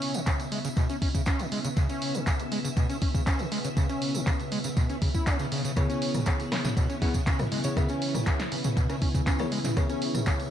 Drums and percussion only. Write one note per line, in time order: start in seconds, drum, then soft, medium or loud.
0.02 open hi-hat loud
0.14 closed hi-hat soft
0.14 tambourine medium
0.26 kick loud
0.26 clap loud
0.26 closed hi-hat medium
0.26 tambourine medium
0.40 closed hi-hat soft
0.40 tambourine soft
0.52 open hi-hat loud
0.65 closed hi-hat soft
0.65 tambourine medium
0.77 kick loud
0.77 closed hi-hat medium
0.77 tambourine medium
0.89 closed hi-hat soft
0.89 tambourine soft
1.02 kick medium
1.02 open hi-hat loud
1.15 kick medium
1.15 closed hi-hat soft
1.15 tambourine medium
1.26 kick loud
1.26 clap loud
1.26 closed hi-hat medium
1.26 tambourine medium
1.39 closed hi-hat soft
1.39 tambourine soft
1.52 open hi-hat medium
1.64 closed hi-hat soft
1.64 tambourine medium
1.77 kick loud
1.77 closed hi-hat medium
1.77 tambourine medium
1.89 closed hi-hat soft
1.89 tambourine soft
2.02 open hi-hat loud
2.15 closed hi-hat soft
2.15 tambourine medium
2.27 kick loud
2.27 clap loud
2.27 closed hi-hat medium
2.27 tambourine medium
2.39 closed hi-hat soft
2.39 tambourine soft
2.52 open hi-hat loud
2.65 closed hi-hat soft
2.65 tambourine medium
2.77 kick loud
2.77 closed hi-hat medium
2.77 tambourine medium
2.90 closed hi-hat soft
2.90 tambourine soft
3.02 kick medium
3.02 open hi-hat loud
3.15 kick medium
3.15 closed hi-hat soft
3.15 tambourine medium
3.27 kick loud
3.27 clap loud
3.27 closed hi-hat medium
3.27 tambourine medium
3.39 closed hi-hat soft
3.39 tambourine soft
3.52 open hi-hat loud
3.64 closed hi-hat soft
3.64 tambourine medium
3.77 kick loud
3.77 closed hi-hat medium
3.77 tambourine medium
3.89 closed hi-hat soft
3.89 tambourine soft
4.02 open hi-hat loud
4.15 closed hi-hat soft
4.15 tambourine medium
4.27 kick loud
4.27 clap loud
4.27 closed hi-hat medium
4.27 tambourine medium
4.40 closed hi-hat soft
4.40 tambourine soft
4.52 open hi-hat medium
4.64 closed hi-hat soft
4.64 tambourine medium
4.77 kick loud
4.77 closed hi-hat medium
4.77 tambourine medium
4.90 closed hi-hat soft
4.90 tambourine soft
5.02 kick medium
5.02 open hi-hat loud
5.14 kick medium
5.14 closed hi-hat soft
5.14 tambourine medium
5.27 kick loud
5.27 clap loud
5.27 closed hi-hat medium
5.27 tambourine medium
5.39 closed hi-hat soft
5.39 tambourine soft
5.52 open hi-hat loud
5.65 closed hi-hat soft
5.65 tambourine medium
5.76 kick loud
5.76 cross-stick medium
5.76 closed hi-hat medium
5.76 tambourine medium
5.90 closed hi-hat soft
5.90 tambourine soft
6.02 open hi-hat loud
6.14 cross-stick soft
6.14 closed hi-hat soft
6.14 mid tom loud
6.14 tambourine medium
6.26 kick loud
6.26 clap loud
6.26 closed hi-hat medium
6.26 tambourine medium
6.40 closed hi-hat soft
6.40 tambourine soft
6.52 cross-stick medium
6.52 snare medium
6.52 open hi-hat medium
6.65 snare medium
6.65 closed hi-hat soft
6.65 mid tom loud
6.65 tambourine medium
6.77 kick loud
6.77 closed hi-hat medium
6.77 tambourine medium
6.90 closed hi-hat soft
6.90 tambourine soft
7.02 kick medium
7.02 snare soft
7.02 open hi-hat loud
7.14 kick medium
7.14 closed hi-hat soft
7.14 tambourine medium
7.27 kick loud
7.27 clap loud
7.27 closed hi-hat medium
7.27 tambourine medium
7.39 cross-stick medium
7.39 closed hi-hat soft
7.39 mid tom medium
7.39 tambourine soft
7.52 open hi-hat medium
7.64 closed hi-hat soft
7.64 tambourine medium
7.77 kick loud
7.77 cross-stick medium
7.77 closed hi-hat medium
7.77 tambourine medium
7.89 closed hi-hat soft
7.89 tambourine soft
8.02 open hi-hat loud
8.15 cross-stick soft
8.15 closed hi-hat soft
8.15 mid tom medium
8.15 tambourine medium
8.26 kick loud
8.26 clap loud
8.26 closed hi-hat medium
8.26 tambourine medium
8.40 snare medium
8.40 closed hi-hat soft
8.40 tambourine soft
8.52 open hi-hat medium
8.64 closed hi-hat soft
8.64 mid tom medium
8.64 tambourine medium
8.77 kick loud
8.77 closed hi-hat medium
8.77 tambourine medium
8.90 cross-stick soft
8.90 closed hi-hat soft
8.90 tambourine soft
9.02 kick medium
9.02 open hi-hat loud
9.15 kick medium
9.15 closed hi-hat soft
9.15 tambourine medium
9.27 kick loud
9.27 clap loud
9.27 closed hi-hat medium
9.27 tambourine medium
9.39 cross-stick medium
9.39 closed hi-hat soft
9.39 tambourine soft
9.52 open hi-hat medium
9.64 snare soft
9.64 closed hi-hat soft
9.64 mid tom medium
9.64 tambourine medium
9.77 kick loud
9.77 cross-stick medium
9.77 closed hi-hat medium
9.77 tambourine medium
9.89 closed hi-hat soft
9.89 tambourine soft
10.02 open hi-hat loud
10.15 cross-stick soft
10.15 closed hi-hat soft
10.15 mid tom medium
10.15 tambourine medium
10.26 kick loud
10.26 clap loud
10.26 closed hi-hat medium
10.26 tambourine medium
10.40 closed hi-hat soft
10.40 tambourine soft